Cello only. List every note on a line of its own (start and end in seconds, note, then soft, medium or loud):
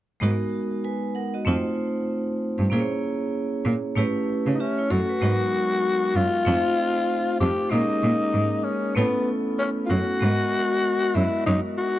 0.22 0.30 G#2 medium
1.46 1.54 F2 medium
2.58 2.66 G2 medium
2.71 2.79 A#2 medium
3.65 3.73 A#2 medium
3.96 4.04 A2 medium
4.46 4.54 C#3 medium
4.91 4.99 F#2 medium
5.22 5.30 G#2 medium
6.15 6.23 F#2 medium
6.47 6.55 F2 medium
7.41 7.49 F2 medium
7.72 7.80 A#2 medium
8.03 8.11 A#2 medium
8.34 8.42 G#2 medium
8.96 9.04 A2 medium
9.90 9.98 F#2 medium
10.22 10.30 G#2 medium
11.15 11.23 F#2 medium
11.46 11.54 F#2 loud